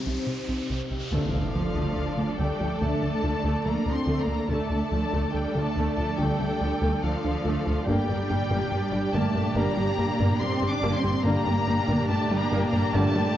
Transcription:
Already playing: analog synth pad C4 D#4 G4 C5, riser
0.06 analog synth bass C2, cello section C3, synth pluck C3
0.27 analog synth bass C3
0.48 analog synth bass C2, cello section C3, synth pluck C4
0.70 analog synth bass C2, cello section C3, synth pluck C3
0.90 analog synth bass C2, cello section C3, synth pluck C4
1.11 analog synth bass D2, double bass section D2, trombone section D3 A3, synth pluck D3, cello section F3, viola section A3 D4, analog synth pad A3 D4 A4 D5, french horn section A3 D4, violin section A4 D5 F5, impact
1.33 analog synth bass D2, double bass section D2, viola section A3, synth pluck D4
1.54 analog synth bass D2, double bass section D2, viola section F3, synth pluck F3
1.74 analog synth bass D2, double bass section D2, synth pluck D3, viola section A3
1.96 analog synth bass D2
2.17 double bass section D2, analog synth bass D3, viola section F3, synth pluck A3
2.38 analog synth bass D2, double bass section D2, synth pluck D3, cello section G3, viola section A3, violin section G5
2.60 analog synth bass D2, double bass section D2, synth pluck F3, viola section A3
2.80 analog synth bass D2, double bass section D2, synth pluck D3, trombone section D3 A3, cello section A3, french horn section A3 D4, viola section A3, violin section A5
3.02 double bass section D2, analog synth bass D3, synth pluck A3, viola section A3
3.23 analog synth bass D2, double bass section D2, viola section F3, synth pluck D4
3.44 analog synth bass D2, double bass section D2, synth pluck D3, viola section A3
3.65 double bass section D2, analog synth bass D2, synth pluck F3, viola section A3, cello section A#3, violin section A#5
3.86 analog synth bass D2, double bass section D2, viola section F3, synth pluck D4
3.93 cello section C4, violin section C6
4.07 analog synth bass D2, double bass section D2, synth pluck D3, viola section A3
4.21 cello section A#3, violin section A#5
4.27 analog synth bass D2, double bass section D2, viola section A3, synth pluck D4
4.49 analog synth bass D2, double bass section D2, synth pluck D3, trombone section D3 A3, cello section A3, french horn section A3 D4, analog synth pad A3 D4 A4 D5, viola section A3 D4, violin section A4 D5 A5
4.70 analog synth bass D2, double bass section D2, viola section A3, synth pluck D4
4.91 analog synth bass D2, double bass section D2, synth pluck F3, viola section F3
5.13 analog synth bass D2, double bass section D2, synth pluck D3, viola section A3
5.34 analog synth bass D2, cello section G3, violin section G5
5.55 double bass section D2, analog synth bass D3, viola section F3, synth pluck A3
5.62 cello section A3, violin section A5
5.76 analog synth bass D2, double bass section D2, synth pluck D3, viola section A3
5.91 cello section A3, violin section A5
5.97 analog synth bass D2, double bass section D2, synth pluck F3, viola section A3
6.18 analog synth bass D2, double bass section D2, synth pluck D3, trombone section D3 A3, cello section G3, viola section A3, french horn section A3 D4, violin section G5
6.39 double bass section D2, analog synth bass D3, synth pluck A3, viola section A3
6.61 analog synth bass D2, double bass section D2, viola section F3, synth pluck D4
6.81 analog synth bass D2, double bass section D2, synth pluck D3, viola section A3
7.03 analog synth bass D2, double bass section D2, synth pluck F3, cello section F3, viola section A3, violin section F5
7.24 analog synth bass D2, double bass section D2, viola section F3, synth pluck D4
7.45 analog synth bass D2, double bass section D2, synth pluck D3, viola section A3
7.67 analog synth bass D2, double bass section D2, viola section A3, synth pluck D4
7.87 double bass section G1, analog synth bass G2, analog synth pad A#2 D4 G4 D5, trombone section D3 G3, synth pluck G3, cello section G3, viola section A#3 D4, french horn section A#3 D4, violin section G4 D5 G5
8.09 double bass section G1, analog synth bass G2, viola section A#3, synth pluck G4
8.30 double bass section G1, analog synth bass G2, viola section G3, synth pluck A#3
8.51 double bass section G1, analog synth bass G2, synth pluck G3, viola section A#3
8.72 analog synth bass G2
8.92 double bass section G1, analog synth bass G3, viola section G3, synth pluck D4
9.14 double bass section G1, analog synth bass G2, synth pluck G3, cello section A3, viola section A#3, violin section A5
9.35 double bass section G1, analog synth bass G2, viola section A#3, synth pluck A#3
9.56 double bass section G1, analog synth bass G2, trombone section D3 G3, synth pluck G3, viola section A#3, french horn section A#3 D4, cello section A#3, violin section A#5
9.77 double bass section G1, analog synth bass G3, viola section A#3, synth pluck D4
9.98 double bass section G1, analog synth bass G2, viola section G3, synth pluck G4
10.19 double bass section G1, analog synth bass G2, synth pluck G3, viola section A#3
10.40 double bass section G1, analog synth bass G2, synth pluck A#3, viola section A#3, cello section C4, violin section C6
10.62 double bass section G1, analog synth bass G2, viola section G3, synth pluck G4
10.69 cello section D4, violin section D6
10.83 double bass section G1, analog synth bass G2, synth pluck G3, viola section A#3
10.96 cello section C4, violin section C6
11.04 double bass section G1, analog synth bass G2, viola section A#3, synth pluck G4
11.24 double bass section G1, analog synth bass G2, analog synth pad A#2 D4 G4 D5, trombone section D3 G3, synth pluck G3, viola section A#3 D4, french horn section A#3 D4, cello section A#3, violin section G4 D5 A#5
11.46 double bass section G1, analog synth bass G2, viola section A#3, synth pluck G4
11.67 double bass section G1, analog synth bass G2, viola section G3, synth pluck A#3
11.88 double bass section G1, analog synth bass G2, synth pluck G3, viola section A#3
12.09 analog synth bass G2, cello section A3, violin section A5
12.31 double bass section G1, analog synth bass G3, viola section G3, synth pluck D4
12.38 cello section A#3, violin section A#5
12.51 double bass section G1, analog synth bass G2, synth pluck G3, viola section A#3
12.66 cello section A#3, violin section A#5
12.73 double bass section G1, analog synth bass G2, synth pluck A#3, viola section A#3
12.94 double bass section G1, analog synth bass G2, french horn section A#2 D4, trombone section D3 G3, synth pluck G3, cello section A3, viola section A#3, violin section A5
13.15 double bass section G1, analog synth bass G3, viola section A#3, synth pluck D4

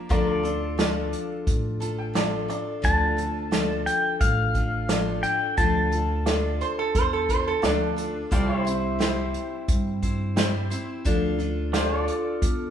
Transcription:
0.09 upright bass D2, steel-string acoustic guitar D3 F3 D4 F4 A4, pedal steel guitar F4 A#4 D5, kick, closed hi-hat
0.31 pedal steel guitar A4
0.43 steel-string acoustic guitar D4 F4 A4, closed hi-hat
0.78 steel-string acoustic guitar F3 D4 F4 A4, grand piano F4 A4 D5, snare, closed hi-hat
1.13 closed hi-hat
1.47 upright bass A1, kick, closed hi-hat
1.80 steel-string acoustic guitar D4 F4 A4, grand piano A5, closed hi-hat
1.99 grand piano G5
2.13 steel-string acoustic guitar F3 D4 F4 A4, grand piano F4 A4 D5 F5, snare, closed hi-hat
2.48 steel-string acoustic guitar D4 F4 A4, grand piano D5, closed hi-hat
2.82 upright bass D2, steel-string acoustic guitar D3 F3 D4 F4 A4, pedal steel guitar A5, kick, closed hi-hat
3.17 steel-string acoustic guitar D4 F4 A4, closed hi-hat
3.51 steel-string acoustic guitar F3 D4 F4 A4, grand piano F4 A4 D5, snare, closed hi-hat
3.86 pedal steel guitar G5, closed hi-hat
4.21 upright bass A1, pedal steel guitar F5, kick, closed hi-hat
4.54 steel-string acoustic guitar D4 F4 A4, kick, closed hi-hat
4.88 steel-string acoustic guitar F3 D4 F4 A4, grand piano F4 A4 D5, snare, closed hi-hat
5.23 steel-string acoustic guitar D4 F4 A4, pedal steel guitar G5, closed hi-hat
5.57 upright bass D2, steel-string acoustic guitar D3 F3 D4 F4 A4, pedal steel guitar A5, kick, closed hi-hat
5.91 steel-string acoustic guitar D4 F4 A4, closed hi-hat
6.26 steel-string acoustic guitar D4 F4 A4, grand piano F4 A4 D5, snare, closed hi-hat
6.61 resonator guitar played with a steel bar C5, closed hi-hat
6.79 resonator guitar played with a steel bar A4
6.95 upright bass E2, resonator guitar played with a steel bar C5, kick, closed hi-hat
7.13 resonator guitar played with a steel bar A4
7.29 steel-string acoustic guitar D4 F4 A4, resonator guitar played with a steel bar C5, kick, closed hi-hat
7.48 resonator guitar played with a steel bar A4
7.62 upright bass D2, steel-string acoustic guitar F3 D4 F4 A4, resonator guitar played with a steel bar D4, grand piano F4 A4 D5, snare, closed hi-hat
7.96 steel-string acoustic guitar D4 F4 A4, closed hi-hat
8.31 upright bass C2, steel-string acoustic guitar C3 G3 C4 E4 C5, pedal steel guitar F4 A4 D5, kick, closed hi-hat
8.52 pedal steel guitar E4
8.58 pedal steel guitar G4 C5
8.65 steel-string acoustic guitar C4 E4 C5, closed hi-hat
8.99 steel-string acoustic guitar G3 C4 E4 C5, grand piano E4 G4 C5, snare, closed hi-hat
9.34 closed hi-hat
9.68 upright bass G2, kick, closed hi-hat
10.02 steel-string acoustic guitar C4 E4 C5, kick, closed hi-hat
10.36 steel-string acoustic guitar G3 C4 E4 C5, grand piano E4 G4 C5, snare, closed hi-hat
10.70 steel-string acoustic guitar C4 E4 C5, closed hi-hat
11.05 upright bass D2, steel-string acoustic guitar D3 F3 D4 F4 A4, kick, closed hi-hat
11.39 steel-string acoustic guitar D4 F4 A4, closed hi-hat
11.73 steel-string acoustic guitar D4 F4 A4, grand piano F4 A4 D5, pedal steel guitar F4 G4 C5, snare, closed hi-hat
11.99 pedal steel guitar A4 D5
12.08 closed hi-hat
12.42 upright bass E2, kick, closed hi-hat

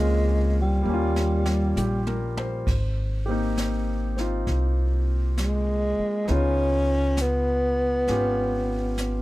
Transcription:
Already playing: upright bass C#2, tenor saxophone G#3, grand piano A#3 C4 C#4 F4
0.61 tenor saxophone G3
0.82 upright bass D#2, grand piano G3 A#3
0.89 grand piano C#4
0.94 grand piano F4
1.16 snare
1.46 snare
1.76 upright bass A#1, grand piano G4, hi-hat pedal, high tom
2.07 grand piano A#4, high tom
2.37 grand piano C5, high tom
2.67 upright bass G#1, brush sweep, kick, snare, ride
3.26 grand piano A#3 C4 G4
3.31 grand piano D#4
3.58 snare, hi-hat pedal
4.17 grand piano C4 D#4 F4, snare
4.47 upright bass C2, brush sweep, snare
5.38 tenor saxophone G#3, snare, hi-hat pedal
5.99 muted upright bass stroke
6.25 upright bass C#2, grand piano B3 D#4 G#4, brush sweep, snare
6.30 tenor saxophone C#4, grand piano F4
7.17 snare, hi-hat pedal
7.21 tenor saxophone B3
8.07 upright bass G#1, grand piano C#4 F4 G4, brush sweep, snare
8.98 snare, hi-hat pedal

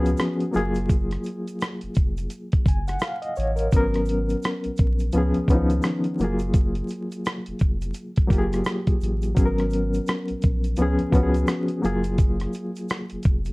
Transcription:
Already playing: sub bass C#2, reed electric piano F3 B3 C#4 F#4 G#4
0.06 closed hi-hat, shaker
0.17 cross-stick, closed hi-hat, shaker
0.40 closed hi-hat
0.51 sub bass F#1, reed electric piano F#3 A#3 F4, shaker
0.56 reed electric piano G#4, closed hi-hat
0.75 closed hi-hat, shaker
0.89 kick, closed hi-hat, shaker
1.11 cross-stick, closed hi-hat
1.24 closed hi-hat, shaker
1.48 closed hi-hat, shaker
1.61 cross-stick, closed hi-hat, shaker
1.81 sub bass F1, closed hi-hat
1.95 sub bass F1, kick, closed hi-hat, shaker
2.17 closed hi-hat, shaker
2.30 closed hi-hat, shaker
2.52 sub bass F#1, kick, closed hi-hat
2.66 sub bass F#1, reed electric piano G#5, kick, closed hi-hat, shaker
2.88 reed electric piano F#5, cross-stick, closed hi-hat, shaker
3.00 reed electric piano F5, cross-stick, closed hi-hat, shaker
3.22 reed electric piano D#5, closed hi-hat
3.36 sub bass A1, reed electric piano C#5, closed hi-hat, shaker
3.56 reed electric piano A#4, closed hi-hat, shaker
3.72 sub bass G#1, reed electric piano F#3 B3 C#4, kick, closed hi-hat, shaker
3.76 reed electric piano A#4
3.94 cross-stick, closed hi-hat
4.05 closed hi-hat, shaker
4.29 closed hi-hat, shaker
4.42 cross-stick, closed hi-hat, shaker
4.64 sub bass A#1, closed hi-hat
4.77 sub bass A#1, kick, closed hi-hat, shaker
4.99 closed hi-hat, shaker
5.12 sub bass C#2, reed electric piano F3 B3 C#4, closed hi-hat, shaker
5.18 reed electric piano G#4
5.34 sub bass C#2, closed hi-hat
5.48 sub bass C#2, reed electric piano D#3 B3 C#4, kick, closed hi-hat, shaker
5.53 reed electric piano F3 D#4
5.70 closed hi-hat, shaker
5.82 cross-stick, closed hi-hat, shaker
6.04 closed hi-hat
6.19 sub bass F#1, reed electric piano F#3 A#3 F4, closed hi-hat, shaker
6.24 reed electric piano G#4
6.39 closed hi-hat, shaker
6.54 kick, closed hi-hat, shaker
6.75 closed hi-hat
6.88 closed hi-hat, shaker
7.12 closed hi-hat, shaker
7.25 cross-stick, closed hi-hat, shaker
7.46 sub bass F1, closed hi-hat
7.59 sub bass F1, kick, closed hi-hat, shaker
7.82 closed hi-hat, shaker
7.94 closed hi-hat, shaker
8.16 sub bass F#1, kick, closed hi-hat
8.27 sub bass F#1, reed electric piano F#3 A#3 F4, kick, shaker
8.32 reed electric piano G4, closed hi-hat
8.38 reed electric piano G#4
8.53 cross-stick, closed hi-hat, shaker
8.64 cross-stick, closed hi-hat, shaker
8.87 kick, closed hi-hat
9.01 sub bass A1, closed hi-hat, shaker
9.22 closed hi-hat, shaker
9.35 sub bass G#1, reed electric piano F#3 B3 C#4, kick, closed hi-hat, shaker
9.39 reed electric piano G#4
9.46 reed electric piano A#4
9.58 cross-stick, closed hi-hat
9.70 closed hi-hat, shaker
9.94 closed hi-hat, shaker
10.07 cross-stick, closed hi-hat, shaker
10.28 sub bass A#1, closed hi-hat
10.42 sub bass A#1, kick, closed hi-hat, shaker
10.64 closed hi-hat, shaker
10.76 sub bass C#2, reed electric piano F3 B3, closed hi-hat, shaker
10.81 reed electric piano C#4 G#4
10.99 sub bass C#2, closed hi-hat
11.12 sub bass C#2, reed electric piano F3 B3 C#4, kick, closed hi-hat, shaker
11.16 reed electric piano F#4
11.23 reed electric piano G#4
11.34 closed hi-hat, shaker
11.47 cross-stick, closed hi-hat, shaker
11.68 closed hi-hat
11.82 sub bass F#1, reed electric piano F#3 A#3 F4 G#4, closed hi-hat, shaker
12.04 closed hi-hat, shaker
12.18 kick, closed hi-hat, shaker
12.40 cross-stick, closed hi-hat
12.53 closed hi-hat, shaker
12.76 closed hi-hat, shaker
12.89 cross-stick, closed hi-hat, shaker
13.10 sub bass F1, closed hi-hat
13.23 sub bass F1, kick, closed hi-hat, shaker
13.45 closed hi-hat, shaker

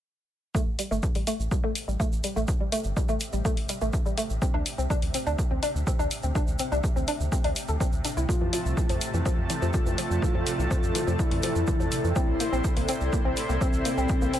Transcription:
0.55 synth drone A2 C3, synth pluck A3, ambient pad G4, kick, shaker
0.67 analog synth bass A1
0.71 ambient pad C5
0.79 synth pluck G3, open hi-hat, shaker
0.91 analog synth bass G1, synth pluck A3, shaker
1.03 kick, shaker
1.15 analog synth bass A1, synth pluck G3, open hi-hat, shaker
1.27 synth pluck A3, open hi-hat, shaker
1.36 analog synth bass A1, ambient pad E5
1.40 shaker
1.51 synth pluck G3, kick, shaker
1.64 analog synth bass A1, synth pluck A3
1.75 open hi-hat, shaker
1.88 analog synth bass A1, synth pluck G3, shaker
2.00 synth pluck A3, kick, shaker
2.12 analog synth bass A1, shaker
2.24 synth pluck G3, open hi-hat, shaker
2.36 analog synth bass A1, synth pluck A3, shaker
2.48 kick, shaker
2.60 analog synth bass A1, synth pluck G3
2.72 synth pluck A3, open hi-hat, shaker
2.84 analog synth bass G1, shaker
2.97 synth pluck G3, kick, shaker
3.09 analog synth bass A1, synth pluck A3, shaker
3.20 open hi-hat, shaker
3.33 analog synth bass A1, synth pluck G3, shaker
3.45 synth pluck A3, kick, shaker
3.57 analog synth bass A1, open hi-hat
3.69 synth pluck G3, open hi-hat, shaker
3.81 analog synth bass A1, synth pluck A3, shaker
3.93 kick, shaker
4.06 analog synth bass A1, synth pluck G3, shaker
4.17 synth pluck A3, open hi-hat, shaker
4.30 analog synth bass A1, shaker
4.42 synth pluck C4, kick, shaker
4.54 analog synth bass D2, synth pluck D4
4.66 open hi-hat, shaker
4.78 analog synth bass C2, synth pluck C4, shaker
4.90 synth pluck D4, kick, shaker
5.02 analog synth bass D2, open hi-hat, shaker
5.14 synth pluck C4, open hi-hat, shaker
5.27 analog synth bass D2, synth pluck D4, shaker
5.38 kick, shaker
5.51 analog synth bass D2, synth pluck C4
5.63 synth pluck D4, open hi-hat, shaker
5.75 analog synth bass D2, shaker
5.87 synth pluck C4, kick, shaker
5.99 analog synth bass D2, synth pluck D4, shaker
6.11 open hi-hat, shaker
6.23 analog synth bass D2, synth pluck C4, shaker
6.35 synth pluck D4, kick, shaker
6.47 analog synth bass D2, shaker
6.59 synth pluck C4, open hi-hat, shaker
6.72 analog synth bass C2, synth pluck D4, shaker
6.84 kick, shaker
6.96 analog synth bass D2, synth pluck C4, shaker
7.08 synth pluck D4, open hi-hat, shaker
7.20 analog synth bass D2, shaker
7.32 synth pluck C4, kick, shaker
7.44 analog synth bass D2, synth pluck D4, open hi-hat
7.56 open hi-hat, shaker
7.68 analog synth bass D2, synth pluck A4, shaker
7.80 synth pluck C4, kick, shaker
7.92 analog synth bass D2, shaker
8.05 synth pluck D4, open hi-hat, shaker
8.17 analog synth bass C2, synth pluck E4, shaker
8.29 analog synth pad C3 A3 A5, soft synth lead F4, kick, shaker
8.41 analog synth bass F2, synth pluck E3
8.53 synth pluck F3, open hi-hat, shaker
8.60 ambient pad D5
8.65 analog synth bass C2, ambient pad A4, shaker
8.77 synth pluck E3, kick, shaker
8.89 analog synth bass F2, synth pluck F3, open hi-hat, shaker
9.01 open hi-hat, shaker
9.14 analog synth bass F2, synth pluck E3, shaker
9.26 synth pluck F3, kick, shaker
9.38 analog synth bass F2
9.50 synth pluck E3, open hi-hat, shaker
9.62 analog synth bass F2, synth pluck F3, shaker
9.73 soft synth lead F4, kick, shaker
9.86 analog synth bass F2, synth pluck E3, shaker
9.98 synth pluck F3, open hi-hat, shaker
10.11 analog synth bass F2, shaker
10.22 synth pluck E3, kick, shaker
10.35 analog synth bass F2, synth pluck F3
10.47 open hi-hat, shaker
10.59 analog synth bass C2, synth pluck E3, shaker
10.71 synth pluck F3, kick, shaker
10.83 analog synth bass F2, shaker
10.95 synth pluck E3, open hi-hat, shaker
11.07 analog synth bass F2, synth pluck F3, shaker
11.19 soft synth lead E4, kick, shaker
11.31 analog synth bass F2, synth pluck E3, open hi-hat
11.43 synth pluck F3, open hi-hat, shaker
11.55 analog synth bass F2, shaker
11.67 synth pluck E3, kick, shaker
11.80 analog synth bass F2, synth pluck F3, shaker
11.92 open hi-hat, shaker
12.04 analog synth bass F2, synth pluck E3, shaker
12.16 analog synth pad C3 E4 C5, synth pluck C4, soft synth lead E4, kick, shaker
12.28 analog synth bass C2
12.40 synth pluck A#3, open hi-hat, shaker
12.52 analog synth bass A#1, synth pluck C4, shaker
12.64 kick, shaker
12.77 analog synth bass C2, synth pluck A#3, open hi-hat, shaker
12.88 synth pluck C4, open hi-hat, shaker
13.01 analog synth bass C2, shaker
13.13 synth pluck A#3, kick, shaker
13.25 analog synth bass C2, synth pluck C4
13.37 open hi-hat, shaker
13.49 analog synth bass C2, synth pluck A#3, shaker
13.61 synth pluck C4, soft synth lead C4, kick, shaker
13.73 analog synth bass C2, shaker
13.85 synth pluck A#3, open hi-hat, shaker
13.97 analog synth bass C2, synth pluck C4, shaker
14.08 kick, shaker
14.22 analog synth bass C2, synth pluck A#3, shaker
14.34 synth pluck C4, open hi-hat, shaker

